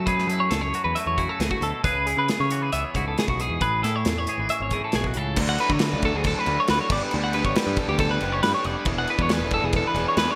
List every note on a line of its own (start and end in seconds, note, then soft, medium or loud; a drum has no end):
0.00 0.25 F#3 medium
0.00 0.96 A3 medium
0.06 1.40 F#2 medium
0.06 0.75 G#4 medium
0.06 0.28 B4 medium
0.06 kick loud
0.06 closed hi-hat medium
0.19 snare soft
0.27 0.48 F#3 medium
0.27 0.40 A4 medium
0.27 closed hi-hat medium
0.31 1.18 E4 medium
0.40 0.52 C#5 medium
0.51 0.71 C#2 medium
0.51 0.61 A4 medium
0.51 snare loud
0.51 closed hi-hat medium
0.61 0.84 C#5 medium
0.74 1.82 F#3 medium
0.74 1.85 F#4 medium
0.74 closed hi-hat medium
0.84 0.95 E2 medium
0.84 0.96 B4 medium
0.95 1.85 A3 medium
0.95 1.07 E5 medium
0.95 closed hi-hat medium
1.06 1.26 E2 medium
1.06 1.18 C#5 medium
1.18 1.61 C#3 medium
1.18 2.07 E4 medium
1.18 1.29 F#4 medium
1.18 kick medium
1.18 closed hi-hat medium
1.29 1.40 A4 medium
1.40 1.50 C#2 medium
1.40 1.62 A2 medium
1.40 1.51 G#4 medium
1.40 snare loud
1.40 closed hi-hat medium
1.51 1.62 F#4 medium
1.51 kick medium
1.61 1.72 D2 medium
1.61 1.83 B2 medium
1.61 1.84 A4 medium
1.61 closed hi-hat medium
1.84 2.14 C#2 loud
1.84 2.51 C#3 medium
1.84 2.51 G#4 medium
1.84 2.07 B4 loud
1.84 kick loud
1.84 closed hi-hat medium
2.07 2.96 E4 medium
2.07 2.18 G#4 medium
2.07 closed hi-hat medium
2.17 2.27 C#3 medium
2.17 2.29 B4 medium
2.28 2.40 G#4 medium
2.28 snare loud
2.28 closed hi-hat medium
2.40 2.69 C#3 medium
2.40 2.62 C#5 medium
2.50 4.27 E3 medium
2.50 2.62 F#4 medium
2.50 closed hi-hat medium
2.62 3.61 G#4 medium
2.62 2.72 B4 medium
2.72 2.83 C#2 medium
2.72 3.59 B3 medium
2.72 2.85 E5 medium
2.72 closed hi-hat medium
2.85 2.96 C#5 medium
2.94 3.14 C#2 loud
2.94 3.59 G#2 medium
2.94 3.60 E4 medium
2.94 3.07 F#4 medium
2.94 kick medium
2.94 closed hi-hat medium
3.08 3.18 A4 medium
3.18 3.39 C#3 medium
3.18 3.29 G#4 medium
3.18 snare loud
3.18 closed hi-hat medium
3.28 3.48 B1 medium
3.28 3.41 F#4 medium
3.28 kick medium
3.39 3.61 B2 medium
3.39 3.62 G#4 medium
3.39 closed hi-hat medium
3.49 3.60 E2 medium
3.61 3.84 A1 loud
3.61 4.72 A2 medium
3.61 4.28 G#4 medium
3.61 3.83 B4 loud
3.61 kick loud
3.61 closed hi-hat medium
3.83 4.03 A2 medium
3.83 4.72 E4 medium
3.83 3.96 A4 medium
3.83 snare soft
3.83 closed hi-hat medium
3.96 4.08 C#5 medium
4.05 4.25 E2 medium
4.05 4.18 A4 medium
4.05 snare loud
4.05 closed hi-hat medium
4.18 4.39 C#5 medium
4.27 5.38 E3 medium
4.27 5.36 G#4 medium
4.27 closed hi-hat medium
4.38 4.48 G#1 medium
4.38 4.50 B4 medium
4.49 5.36 C#4 medium
4.49 4.61 E5 medium
4.49 closed hi-hat medium
4.60 4.80 G#1 medium
4.60 4.73 C#5 medium
4.71 5.36 A2 medium
4.71 5.36 E4 medium
4.71 4.83 G#4 medium
4.71 kick medium
4.71 closed hi-hat medium
4.84 4.95 A4 medium
4.92 5.14 B1 medium
4.92 5.16 B2 medium
4.92 5.07 G#4 medium
4.92 snare loud
4.92 closed hi-hat medium
5.04 5.17 F#4 medium
5.04 kick medium
5.14 5.36 C#2 medium
5.14 5.38 C#3 medium
5.14 5.38 A4 medium
5.14 closed hi-hat medium
5.36 5.56 D2 loud
5.36 5.79 D3 medium
5.36 5.81 F#3 medium
5.36 5.61 A3 medium
5.36 5.61 D4 loud
5.36 5.58 F#4 loud
5.36 kick loud
5.36 crash loud
5.36 crash medium
5.49 5.60 F#5 medium
5.58 5.81 A3 medium
5.58 5.83 D4 medium
5.58 5.83 F#4 medium
5.58 5.72 B4 medium
5.58 crash medium
5.69 5.95 D3 medium
5.69 5.82 C#5 medium
5.69 kick medium
5.79 6.68 D3 medium
5.79 6.66 F#3 medium
5.79 6.47 A3 loud
5.79 6.04 B4 medium
5.79 snare loud
5.79 crash loud
5.83 6.47 D4 loud
5.83 6.45 F#4 loud
5.93 6.12 D2 loud
6.02 6.17 A4 medium
6.02 kick loud
6.02 crash medium
6.14 6.33 D2 medium
6.14 6.26 G#4 medium
6.24 6.39 A4 loud
6.24 kick loud
6.24 crash loud
6.39 6.59 B4 medium
6.46 6.57 D2 loud
6.46 6.68 A3 medium
6.46 6.70 D4 medium
6.46 6.69 F#4 medium
6.46 crash medium
6.60 6.70 C#5 medium
6.67 6.79 D2 loud
6.67 6.89 F#3 medium
6.67 6.89 A3 medium
6.67 6.91 D4 medium
6.67 6.90 F#4 medium
6.67 6.80 B4 medium
6.67 snare loud
6.67 crash medium
6.81 6.91 C#5 medium
6.90 7.00 G1 loud
6.90 7.13 B3 medium
6.90 7.15 D4 loud
6.90 7.15 G4 medium
6.90 7.03 D5 medium
6.90 kick loud
6.90 crash loud
6.94 7.11 G3 medium
7.03 7.13 B4 medium
7.11 7.42 D2 loud
7.11 7.55 G3 medium
7.11 7.37 B3 medium
7.11 crash medium
7.15 7.35 D4 loud
7.15 7.33 G4 medium
7.24 7.34 F#5 medium
7.33 7.58 D4 medium
7.33 7.58 G4 medium
7.33 7.45 B4 medium
7.33 crash medium
7.37 7.57 B3 medium
7.44 7.54 G1 medium
7.44 7.56 C#5 medium
7.44 kick medium
7.55 8.41 G3 loud
7.55 8.22 B3 loud
7.55 8.22 D4 loud
7.55 8.20 G4 loud
7.55 7.78 B4 medium
7.55 snare loud
7.55 crash medium
7.67 7.76 G2 medium
7.76 7.89 A4 medium
7.76 kick medium
7.76 crash medium
7.88 8.17 D2 loud
7.88 8.00 G4 medium
7.98 8.11 A4 loud
7.98 kick loud
7.98 crash medium
8.11 8.32 B4 medium
8.20 8.41 F#1 loud
8.20 8.43 B3 medium
8.20 8.43 D4 medium
8.20 8.44 G4 medium
8.20 crash medium
8.32 8.42 C#5 medium
8.43 8.53 G2 loud
8.43 8.85 G3 medium
8.43 8.65 B3 medium
8.43 8.64 D4 medium
8.43 8.62 G4 medium
8.43 8.54 B4 medium
8.43 snare loud
8.43 crash medium
8.54 8.65 C#5 medium
8.63 8.75 F1 loud
8.63 8.86 B3 medium
8.63 8.86 D4 medium
8.63 8.85 G4 medium
8.63 8.77 D5 medium
8.63 crash medium
8.77 8.87 B4 medium
8.85 9.05 E1 loud
8.85 9.28 E3 medium
8.85 9.10 B3 loud
8.85 9.08 D4 loud
8.85 9.07 G#4 loud
8.85 kick loud
8.85 crash medium
8.99 9.09 F#5 medium
9.07 9.29 B3 medium
9.07 9.31 D4 medium
9.07 9.32 G#4 medium
9.07 9.21 B4 medium
9.07 crash medium
9.19 9.41 E2 medium
9.19 9.32 C#5 medium
9.19 kick medium
9.29 10.15 E3 medium
9.29 9.97 B3 medium
9.29 9.95 D4 loud
9.29 9.93 G#4 loud
9.29 9.53 B4 medium
9.29 snare loud
9.29 crash medium
9.40 9.59 E1 loud
9.51 9.65 A4 medium
9.51 kick medium
9.51 crash medium
9.62 9.82 E1 loud
9.62 9.75 G#4 medium
9.73 9.86 A4 loud
9.73 kick loud
9.73 crash medium
9.87 10.08 B4 medium
9.94 10.05 E1 loud
9.94 10.17 B3 medium
9.94 10.17 D4 medium
9.94 10.18 G#4 medium
9.94 crash medium
10.08 10.18 C#5 medium
10.16 10.27 E2 loud
10.16 10.35 E3 medium
10.16 10.35 B3 medium
10.16 10.35 D4 medium
10.16 10.35 G#4 loud
10.16 10.31 B4 loud
10.16 snare loud
10.16 crash medium
10.31 10.35 C#5 medium